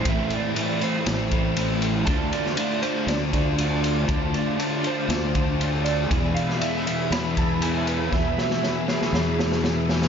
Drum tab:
RD |x-x-x-x-x-x-x-x-|x-x-x-x-x-x-x-x-|x-x-x-x-x-x-x-x-|x-x-x-x-x-x-x-x-|
SD |--------o-------|---o----o-------|--------o-------|---o----o-------|
BD |o---------o-----|o---------o-----|o---------o-----|o---------o-----|

RD |----------------|
SD |o-ooo-ooo-ooo-oo|
BD |o---------------|